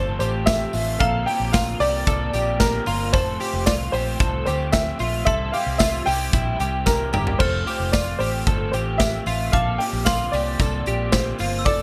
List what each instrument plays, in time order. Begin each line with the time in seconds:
Already playing: fingered electric bass G1, overdriven electric guitar F3 A3 C4 F4, clean electric guitar A4, upright piano C5, glockenspiel A5
0.19 fingered electric bass A1, overdriven electric guitar A3 C4 F4, clean electric guitar G4, upright piano C5, hi-hat pedal, open hi-hat, tambourine
0.46 overdriven electric guitar F3 A3 C4 F4, upright piano E5, kick, snare, hi-hat pedal, open hi-hat, tambourine
0.73 fingered electric bass A1, overdriven electric guitar A3 C4 F4, clean electric guitar F4, hi-hat pedal, open hi-hat, tambourine
0.99 fingered electric bass A#1, overdriven electric guitar A#2 D3 A#3 C4 F4, clean electric guitar A4, upright piano F5, glockenspiel A#5, kick, hi-hat pedal, open hi-hat
1.26 overdriven electric guitar A#3 C4 F4, clean electric guitar G4, upright piano G5, hi-hat pedal, open hi-hat
1.40 fingered electric bass A#1
1.52 overdriven electric guitar D3 A#3 C4 F4, clean electric guitar F4, upright piano F5, kick, snare, hi-hat pedal, open hi-hat, tambourine
1.80 fingered electric bass C2, overdriven electric guitar A#3 C4 F4, clean electric guitar G4, upright piano D5, hi-hat pedal, open hi-hat, tambourine
2.06 fingered electric bass C2, overdriven electric guitar A#2 D3 A#3 C4 F4, clean electric guitar A4, kick, hi-hat pedal, open hi-hat, tambourine
2.33 fingered electric bass A#1, overdriven electric guitar A#3 C4 F4, clean electric guitar G4, hi-hat pedal, open hi-hat, tambourine
2.60 overdriven electric guitar D3 A#3 C4 F4, upright piano A#4, kick, snare, hi-hat pedal, open hi-hat, tambourine
2.86 fingered electric bass G1, overdriven electric guitar A#3 C4 F4, clean electric guitar F4, hi-hat pedal, open hi-hat, tambourine
3.13 fingered electric bass F1, overdriven electric guitar F3 A3 C4 F4, clean electric guitar A4, upright piano C5, glockenspiel C6, kick, hi-hat pedal, open hi-hat, tambourine
3.40 overdriven electric guitar A3 C4 F4, clean electric guitar G4, hi-hat pedal, open hi-hat, tambourine
3.53 fingered electric bass F1
3.66 fingered electric bass C2, overdriven electric guitar F3 A3 C4 F4, clean electric guitar F4, upright piano D5, kick, snare, hi-hat pedal, open hi-hat, tambourine
3.92 fingered electric bass A#1, overdriven electric guitar A3 C4 F4, clean electric guitar G4, upright piano C5, hi-hat pedal, open hi-hat, tambourine
4.20 fingered electric bass C2, overdriven electric guitar F3 A3 C4 F4, clean electric guitar A4, kick, hi-hat pedal, open hi-hat, tambourine
4.46 fingered electric bass D2, overdriven electric guitar A3 C4 F4, clean electric guitar G4, upright piano C5, hi-hat pedal, open hi-hat, tambourine
4.72 overdriven electric guitar F3 A3 C4 F4, upright piano E5, kick, snare, hi-hat pedal, open hi-hat, tambourine
4.99 fingered electric bass A#1, overdriven electric guitar A3 C4 F4, clean electric guitar F4, hi-hat pedal, open hi-hat, tambourine
5.25 fingered electric bass C2, overdriven electric guitar C3 E3 G3 C4 E4, clean electric guitar A4, upright piano E5, glockenspiel C6, kick, hi-hat pedal, open hi-hat
5.52 overdriven electric guitar G3 C4 E4, clean electric guitar G4, upright piano F5, hi-hat pedal, open hi-hat
5.66 fingered electric bass C2
5.78 overdriven electric guitar E3 G3 C4 E4, clean electric guitar F4, upright piano E5, kick, snare, hi-hat pedal, open hi-hat, tambourine
6.06 fingered electric bass C2, overdriven electric guitar G3 C4 E4, clean electric guitar G4, upright piano G5, hi-hat pedal, open hi-hat, tambourine
6.33 fingered electric bass A#1, overdriven electric guitar C3 E3 G3 C4 E4, clean electric guitar E4, kick, hi-hat pedal, open hi-hat, tambourine
6.60 fingered electric bass C2, overdriven electric guitar G3 C4 E4, clean electric guitar G4, hi-hat pedal, open hi-hat, tambourine
6.86 overdriven electric guitar E3 G3 C4 E4, upright piano A#4, kick, snare, tambourine
7.13 fingered electric bass G1, overdriven electric guitar G3 C4 E4, clean electric guitar G4, mid tom, tambourine
7.27 floor tom
7.39 fingered electric bass F1, overdriven electric guitar F3 A3 C4 F4, clean electric guitar A4, upright piano C5, glockenspiel F6, kick, tambourine, crash
7.66 overdriven electric guitar A3 C4 F4, clean electric guitar G4, hi-hat pedal, open hi-hat, tambourine
7.80 fingered electric bass F1
7.92 overdriven electric guitar F3 A3 C4 F4, clean electric guitar F4, upright piano D5, kick, snare, hi-hat pedal, open hi-hat, tambourine
8.19 fingered electric bass A1, overdriven electric guitar A3 C4 F4, clean electric guitar G4, upright piano C5, hi-hat pedal, open hi-hat, tambourine
8.46 fingered electric bass G1, overdriven electric guitar F3 A3 C4 F4, clean electric guitar A4, kick, hi-hat pedal, open hi-hat, tambourine
8.72 fingered electric bass A1, overdriven electric guitar A3 C4 F4, clean electric guitar G4, upright piano C5, hi-hat pedal, open hi-hat, tambourine
8.98 overdriven electric guitar F3 A3 C4 F4, upright piano E5, kick, snare, hi-hat pedal, open hi-hat, tambourine
9.26 fingered electric bass A1, overdriven electric guitar A3 C4 F4, clean electric guitar F4, hi-hat pedal, open hi-hat, tambourine
9.52 fingered electric bass A#1, overdriven electric guitar A#2 D3 A#3 C4 F4, clean electric guitar A4, upright piano F5, glockenspiel D6, kick, hi-hat pedal, open hi-hat
9.78 overdriven electric guitar A#3 C4 F4, clean electric guitar G4, upright piano G5, hi-hat pedal, open hi-hat
9.93 fingered electric bass A#1
10.05 overdriven electric guitar D3 A#3 C4 F4, clean electric guitar F4, upright piano F5, glockenspiel C6, kick, snare, hi-hat pedal, open hi-hat, tambourine
10.32 fingered electric bass C2, overdriven electric guitar A#3 C4 F4, clean electric guitar G4, upright piano D5, hi-hat pedal, open hi-hat, tambourine
10.59 fingered electric bass C2, overdriven electric guitar A#2 D3 A#3 C4 F4, clean electric guitar A4, kick, hi-hat pedal, open hi-hat, tambourine
10.86 fingered electric bass A#1, overdriven electric guitar A#3 C4 F4, clean electric guitar G4, hi-hat pedal, open hi-hat, tambourine
11.12 overdriven electric guitar D3 A#3 C4 F4, upright piano C5, kick, snare, hi-hat pedal, open hi-hat, tambourine
11.39 fingered electric bass G1, overdriven electric guitar A#3 C4 F4, clean electric guitar F4, hi-hat pedal, open hi-hat, tambourine
11.59 glockenspiel E6
11.65 fingered electric bass F1, overdriven electric guitar F3 A3 C4 F4, clean electric guitar A4, upright piano D5, glockenspiel D6, kick, hi-hat pedal, open hi-hat, tambourine